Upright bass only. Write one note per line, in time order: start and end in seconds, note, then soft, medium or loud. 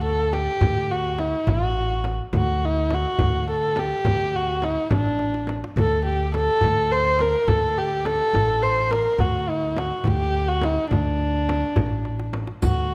0.00 0.46 D2 medium
0.61 1.32 D2 medium
1.47 2.18 A1 medium
2.33 3.04 D2 medium
3.20 3.91 D2 medium
4.05 4.76 D2 medium
4.91 5.62 A1 medium
5.76 6.47 D2 medium
6.62 7.33 D2 medium
7.47 8.19 D2 medium
8.33 9.04 A1 medium
9.18 9.90 D2 medium
10.05 10.76 D2 medium
10.91 11.62 D2 medium
11.77 12.48 A1 medium
12.63 12.94 D2 medium